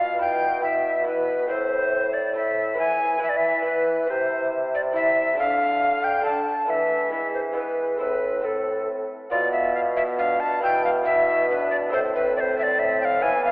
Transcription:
0.00 1.46 B2 soft
0.00 1.52 B2 medium
0.00 0.17 B3 soft
0.00 0.19 F4 soft
0.00 0.20 F4 medium
0.00 0.20 F5 medium
0.18 0.59 B3 soft
0.18 0.60 E4 soft
0.18 0.63 E4 medium
0.18 0.63 G5 medium
0.60 1.02 B3 soft
0.60 1.03 E4 soft
0.60 1.06 E5 medium
0.64 1.06 E4 medium
1.04 1.47 B3 soft
1.04 1.48 E4 soft
1.04 1.48 B4 medium
1.08 1.48 E4 medium
1.46 2.32 A3 soft
1.46 2.32 C4 soft
1.46 2.34 E4 medium
1.46 2.33 E4 soft
1.46 2.15 C5 medium
1.50 2.76 A2 soft
1.50 2.79 A2 medium
2.13 2.36 D5 medium
2.33 2.77 A3 soft
2.33 2.74 C4 soft
2.33 2.75 E4 soft
2.33 2.78 E4 medium
2.33 2.79 E5 medium
2.74 4.05 E3 medium
2.74 3.18 B3 soft
2.74 3.19 E4 soft
2.79 4.07 E3 medium
2.79 3.21 E4 medium
2.79 3.22 G#5 loud
3.19 3.61 B3 soft
3.19 3.62 E4 soft
3.19 3.65 E4 medium
3.19 3.31 E5 medium
3.29 3.38 D5 medium
3.37 3.65 E5 medium
3.62 4.06 B3 soft
3.62 4.06 E4 soft
3.62 4.08 E4 medium
3.62 4.12 B4 medium
4.06 5.35 C3 medium
4.06 4.91 C4 soft
4.06 4.92 E4 soft
4.06 4.91 E4 medium
4.10 4.50 C5 medium
4.75 4.81 D5 medium
4.92 5.34 C4 soft
4.92 5.35 E4 medium
4.92 5.38 E4 medium
4.92 5.38 E5 loud
5.34 6.20 A3 soft
5.34 6.21 D4 medium
5.34 6.23 D4 medium
5.34 6.22 A4 soft
5.39 6.65 D3 medium
5.39 6.52 D3 medium
5.39 6.06 F5 loud
6.04 6.25 G5 medium
6.22 6.64 A3 medium
6.22 6.66 D4 soft
6.22 6.68 D4 medium
6.22 6.67 A4 medium
6.22 6.71 A5 loud
6.65 7.96 E3 medium
6.65 7.09 A3 soft
6.65 7.14 A3 medium
6.65 7.10 B3 medium
6.65 7.10 E4 soft
6.69 7.98 E3 medium
6.69 7.33 E5 medium
7.10 7.51 G#3 soft
7.10 7.43 G#3 medium
7.10 7.52 B3 soft
7.10 7.53 E4 soft
7.34 7.40 C5 medium
7.52 7.96 G#3 soft
7.52 7.97 B3 soft
7.52 7.98 E4 soft
7.56 8.01 G#3 medium
7.56 7.99 B4 medium
7.97 9.06 A2 medium
7.97 9.08 A2 medium
7.97 8.40 A3 soft
7.97 8.41 C4 soft
7.97 8.43 C4 medium
7.97 8.42 E4 soft
7.97 8.46 B4 medium
8.41 9.28 A3 soft
8.41 9.28 C4 soft
8.41 9.09 C4 medium
8.41 9.29 E4 soft
8.41 8.88 A4 medium
9.30 10.58 B2 medium
9.30 10.59 B2 medium
9.30 10.57 B3 medium
9.30 10.19 B3 medium
9.30 10.58 F4 medium
9.30 9.51 D5 loud
9.52 9.74 E5 loud
9.75 9.81 F5 loud
9.97 10.03 E5 loud
10.18 10.63 D4 medium
10.18 10.42 F5 loud
10.40 10.62 A5 loud
10.60 11.88 B2 medium
10.60 11.90 B2 medium
10.60 11.02 B3 medium
10.60 11.05 E4 medium
10.60 11.03 E4 medium
10.60 10.84 G5 loud
10.84 10.90 F5 loud
11.03 11.89 B3 medium
11.03 11.89 E4 medium
11.03 11.51 E4 medium
11.03 11.48 E5 loud
11.50 11.95 D4 medium
11.50 11.70 B4 loud
11.71 11.77 D5 loud
11.89 13.20 A2 medium
11.89 13.19 A2 medium
11.89 13.17 A3 medium
11.89 13.17 C4 medium
11.89 13.18 E4 medium
11.93 12.80 C4 medium
11.93 11.99 C5 loud
12.15 12.36 B4 loud
12.37 12.57 C5 loud
12.37 12.41 D5 loud
12.58 12.64 E5 loud
12.63 12.81 D5 loud
12.79 13.25 C4 medium
12.79 13.00 E5 loud
13.01 13.24 F5 loud
13.01 13.06 G5 loud
13.19 13.52 E3 medium
13.19 13.52 B3 medium
13.19 13.52 E4 medium
13.19 13.44 G#5 loud
13.23 13.52 E3 medium
13.23 13.52 B3 medium
13.45 13.52 F5 loud

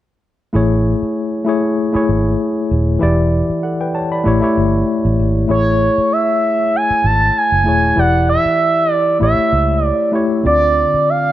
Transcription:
0.53 0.93 A1 loud
0.53 1.35 A3 medium
0.53 1.36 E4 medium
0.53 1.36 G#4 medium
0.53 1.37 C#5 medium
1.02 muted fingered electric bass stroke soft
1.45 1.87 A3 medium
1.45 1.88 E4 medium
1.45 1.89 G#4 medium
1.49 1.89 C#5 medium
1.92 2.88 A3 medium
1.92 2.89 E4 medium
1.92 2.89 G#4 medium
1.92 2.90 C#5 medium
1.92 muted fingered electric bass stroke soft
2.09 2.34 G#1 medium
2.71 2.96 D#1 medium
2.99 3.41 E1 medium
2.99 3.82 E3 medium
2.99 3.83 E4 medium
2.99 3.84 G4 medium
2.99 3.64 D5 medium
3.50 muted fingered electric bass stroke soft
3.63 3.80 A4 soft
3.63 3.79 F#5 medium
3.81 3.94 B4 soft
3.81 3.94 G5 medium
3.95 4.11 C#5 medium
3.95 4.11 A5 medium
4.12 4.41 D5 soft
4.12 4.41 B5 medium
4.24 4.39 A1 medium
4.24 4.39 A3 medium
4.24 4.40 E4 medium
4.24 4.40 G4 medium
4.24 4.41 C#5 medium
4.40 5.35 A3 medium
4.40 5.36 E4 medium
4.40 5.37 G4 medium
4.40 5.37 C#5 medium
4.57 4.82 G1 medium
5.05 5.16 A1 medium
5.19 5.44 G#1 medium
5.48 5.88 A1 medium
5.48 6.58 A3 medium
5.48 6.58 E4 medium
5.48 6.59 G#4 medium
5.48 6.14 C#5 medium
5.48 6.59 C#5 medium
5.98 muted fingered electric bass stroke soft
6.12 6.77 E5 medium
6.76 7.07 G#5 loud
6.90 muted fingered electric bass stroke soft
7.04 7.29 G#1 medium
7.04 7.39 A5 loud
7.37 8.00 G#5 loud
7.52 7.67 F#1 medium
7.64 7.92 D#1 medium
7.64 7.93 A3 medium
7.64 7.93 E4 medium
7.64 7.94 G#4 medium
7.69 7.95 C#5 medium
7.96 8.36 E1 medium
7.96 9.05 E3 medium
7.96 9.06 E4 medium
7.96 9.07 G4 medium
7.96 9.07 D5 medium
7.96 8.29 F#5 loud
8.29 8.92 E5 medium
8.46 muted fingered electric bass stroke soft
8.92 9.18 D5 medium
9.19 9.35 A1 medium
9.19 10.02 A3 medium
9.19 10.03 E4 medium
9.19 10.03 G4 medium
9.19 10.04 C#5 medium
9.19 9.86 E5 medium
9.53 9.91 C#2 medium
9.86 10.11 D5 medium
10.12 10.40 A3 medium
10.12 10.41 E4 medium
10.12 10.41 G4 medium
10.12 10.42 C#5 medium
10.43 10.84 D2 medium
10.43 11.32 D3 medium
10.43 11.32 C4 medium
10.43 11.32 F4 medium
10.43 11.32 D5 medium
10.43 11.11 D5 medium
10.94 muted fingered electric bass stroke soft
11.10 11.32 F5 loud

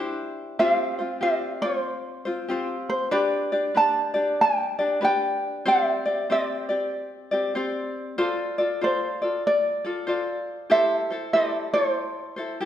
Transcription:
0.00 0.59 D4 medium
0.00 0.59 E4 medium
0.00 0.59 G4 medium
0.00 0.60 C5 medium
0.00 0.59 E5 medium
0.59 0.99 C4 medium
0.59 0.99 F4 medium
0.59 0.99 G4 medium
0.59 0.97 C5 medium
0.59 0.70 E5 medium
0.70 1.22 F5 medium
0.99 1.21 C4 soft
0.99 1.21 F4 soft
0.99 1.21 C5 soft
1.21 1.62 C4 soft
1.21 1.62 F4 medium
1.21 1.61 G4 soft
1.21 1.61 C5 medium
1.21 1.62 D5 medium
1.62 2.26 C4 soft
1.62 2.25 F4 soft
1.62 2.88 C5 medium
1.62 2.24 C5 soft
2.25 2.48 C4 soft
2.25 2.49 F4 soft
2.25 2.48 C5 medium
2.48 3.11 C4 medium
2.48 3.12 F4 medium
2.48 3.11 G4 medium
2.48 3.12 C5 medium
2.89 3.11 C5 medium
3.11 3.52 D4 medium
3.11 3.51 G4 medium
3.11 3.52 B4 medium
3.11 3.77 D5 medium
3.11 3.51 D5 medium
3.52 3.74 D4 soft
3.52 3.75 G4 soft
3.52 3.75 D5 soft
3.74 4.15 D4 soft
3.74 4.13 G4 medium
3.74 4.15 B4 medium
3.74 4.13 D5 medium
3.74 4.41 A5 medium
4.14 4.80 D4 soft
4.14 4.79 G4 soft
4.14 4.78 D5 medium
4.41 5.03 G5 medium
4.79 5.00 D4 soft
4.79 5.00 G4 soft
4.79 5.02 D5 medium
5.01 5.66 D4 medium
5.01 5.66 G4 medium
5.01 5.64 B4 medium
5.01 5.66 D5 medium
5.01 5.68 G5 medium
5.66 6.06 C4 medium
5.66 6.05 G4 medium
5.66 6.05 C5 medium
5.66 6.04 D5 medium
5.66 6.32 E5 medium
6.05 6.29 C4 soft
6.05 6.29 G4 soft
6.05 6.28 D5 soft
6.30 6.69 C4 medium
6.30 6.69 G4 medium
6.30 6.69 C5 medium
6.30 6.68 D5 medium
6.30 6.89 D5 medium
6.69 7.33 C4 soft
6.69 7.31 G4 soft
6.69 7.31 D5 soft
7.31 7.55 C4 soft
7.31 7.55 G4 medium
7.31 7.54 D5 soft
7.55 8.18 C4 medium
7.55 8.18 G4 medium
7.55 8.18 C5 medium
7.55 8.18 D5 medium
8.18 8.58 F4 medium
8.18 8.57 A4 medium
8.18 8.58 C5 medium
8.18 8.57 D5 medium
8.58 8.80 F4 soft
8.58 8.81 A4 soft
8.58 8.81 D5 soft
8.81 9.22 F4 medium
8.81 9.21 A4 medium
8.81 9.21 C5 soft
8.81 9.46 C5 medium
8.81 9.20 D5 medium
9.22 9.85 F4 soft
9.22 9.86 A4 soft
9.22 9.83 D5 soft
9.47 10.71 D5 medium
9.85 10.06 F4 soft
9.85 10.07 A4 soft
9.85 10.06 D5 medium
10.07 10.69 F4 medium
10.07 10.70 A4 medium
10.07 10.71 C5 medium
10.07 10.70 D5 medium
10.70 11.11 E4 medium
10.70 11.11 G4 medium
10.70 11.10 A4 medium
10.70 11.09 C5 medium
10.70 11.33 E5 medium
11.10 11.33 E4 soft
11.10 11.33 A4 soft
11.10 11.34 C5 soft
11.33 11.74 E4 medium
11.33 11.74 G4 medium
11.33 11.73 A4 medium
11.33 11.72 C5 medium
11.33 11.73 D5 medium
11.74 12.38 E4 soft
11.74 12.36 A4 soft
11.74 12.65 C5 medium
11.74 12.35 C5 soft
12.36 12.60 E4 soft
12.36 12.61 A4 soft
12.36 12.60 C5 soft
12.61 12.65 E4 medium
12.61 12.65 G4 medium

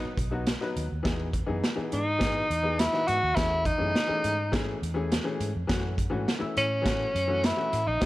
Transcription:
0.00 0.11 F#3 medium
0.00 0.11 B3 medium
0.00 0.12 D#4 medium
0.00 0.17 D#4 medium
0.00 0.12 B4 loud
0.05 muted fingered electric bass stroke soft
0.17 0.54 B1 medium
0.17 kick medium
0.17 closed hi-hat medium
0.31 0.47 F#3 medium
0.31 0.47 B3 medium
0.31 0.47 D#4 medium
0.31 0.48 F#4 medium
0.47 snare loud
0.47 closed hi-hat medium
0.61 0.84 F#3 medium
0.61 0.84 B3 medium
0.61 0.84 D#4 medium
0.61 0.85 B4 medium
0.61 snare soft
0.76 0.88 D#2 medium
0.76 closed hi-hat medium
0.92 1.03 D#2 medium
1.03 1.42 E2 medium
1.03 1.27 E3 medium
1.03 1.27 B3 medium
1.03 1.28 D#4 medium
1.03 1.28 G#4 medium
1.03 kick loud
1.03 snare loud
1.03 closed hi-hat medium
1.33 kick medium
1.33 closed hi-hat medium
1.46 1.61 F#2 medium
1.46 1.63 E3 medium
1.46 1.63 B3 medium
1.46 1.63 D#4 medium
1.46 1.63 G#4 medium
1.64 snare medium
1.64 closed hi-hat medium
1.76 2.00 E3 medium
1.76 2.00 B3 medium
1.76 2.00 D#4 medium
1.76 2.00 G#4 medium
1.76 muted fingered electric bass stroke soft
1.92 2.41 G#2 medium
1.92 2.80 D#4 medium
1.92 closed hi-hat medium
2.19 2.43 E3 medium
2.19 2.43 B3 medium
2.19 2.43 D#4 medium
2.19 2.43 G#4 medium
2.19 kick medium
2.19 snare loud
2.19 closed hi-hat medium
2.50 2.87 E2 medium
2.50 closed hi-hat medium
2.63 2.79 E3 medium
2.63 2.79 B3 medium
2.63 2.80 D#4 medium
2.63 2.80 G#4 medium
2.79 3.09 E4 medium
2.79 snare loud
2.79 closed hi-hat medium
2.93 3.16 E3 medium
2.93 3.17 B3 medium
2.93 3.17 D#4 medium
2.93 3.17 F#4 medium
2.93 snare soft
3.08 3.21 G#2 medium
3.08 3.37 F#4 loud
3.08 closed hi-hat medium
3.23 3.35 D#2 medium
3.35 3.73 E2 medium
3.35 3.59 E3 medium
3.35 3.60 A3 medium
3.35 3.60 C#4 medium
3.35 3.67 E4 loud
3.35 3.60 G#4 medium
3.35 kick loud
3.35 snare medium
3.35 closed hi-hat medium
3.65 4.82 D#4 medium
3.65 kick medium
3.65 closed hi-hat medium
3.78 3.93 F#2 medium
3.78 3.95 E3 medium
3.78 3.95 A3 medium
3.78 3.95 C#4 medium
3.78 3.96 G#4 medium
3.95 snare medium
3.95 closed hi-hat medium
4.07 4.32 E3 medium
4.07 4.32 A3 medium
4.07 4.32 C#4 medium
4.07 4.32 G#4 medium
4.07 muted fingered electric bass stroke soft
4.24 4.73 G#2 medium
4.24 closed hi-hat medium
4.52 4.76 E3 medium
4.52 4.76 A3 medium
4.52 4.76 C#4 medium
4.52 4.76 G#4 loud
4.52 kick medium
4.52 snare loud
4.52 closed hi-hat medium
4.82 5.19 E2 medium
4.82 closed hi-hat medium
4.94 5.11 E3 medium
4.94 5.11 A3 medium
4.94 5.11 C#4 medium
4.94 5.11 G#4 medium
5.12 snare loud
5.12 closed hi-hat medium
5.24 5.48 E3 medium
5.24 5.48 A3 medium
5.24 5.48 C#4 medium
5.24 5.49 G#4 medium
5.40 5.52 G#2 medium
5.40 closed hi-hat medium
5.56 5.67 F2 medium
5.67 6.06 F#2 medium
5.67 5.91 E3 medium
5.67 5.91 A3 medium
5.67 5.92 C#4 medium
5.67 5.92 F#4 medium
5.67 kick loud
5.67 snare loud
5.67 closed hi-hat medium
5.98 kick medium
5.98 closed hi-hat medium
6.10 6.25 G#2 medium
6.10 6.27 E3 medium
6.10 6.27 A3 medium
6.10 6.27 C#4 medium
6.10 6.27 F#4 medium
6.28 snare medium
6.28 closed hi-hat medium
6.39 6.63 E3 medium
6.39 6.63 A3 medium
6.39 6.64 C#4 medium
6.39 6.64 E4 medium
6.39 muted fingered electric bass stroke medium
6.57 7.05 A2 medium
6.57 7.47 C#4 medium
6.57 closed hi-hat medium
6.82 7.07 E3 medium
6.82 7.07 A3 medium
6.82 7.07 C#4 medium
6.82 7.07 F#4 medium
6.82 kick medium
6.82 closed hi-hat medium
6.86 snare loud
7.15 7.51 F#2 medium
7.15 closed hi-hat medium
7.27 7.44 E3 medium
7.27 7.44 A3 medium
7.27 7.44 C#4 medium
7.27 7.44 F#4 medium
7.44 7.89 E4 medium
7.44 snare loud
7.44 closed hi-hat loud
7.56 7.80 E3 medium
7.56 7.80 A3 medium
7.56 7.81 C#4 medium
7.56 7.81 F#4 medium
7.73 7.85 A2 medium
7.73 closed hi-hat medium
7.87 7.99 A#1 medium
7.87 8.06 D#4 medium
8.01 8.06 B1 medium
8.01 8.06 E3 medium
8.01 8.06 G#3 medium
8.01 8.06 B3 medium
8.01 8.06 G#4 medium
8.01 kick loud
8.01 snare loud
8.01 closed hi-hat medium

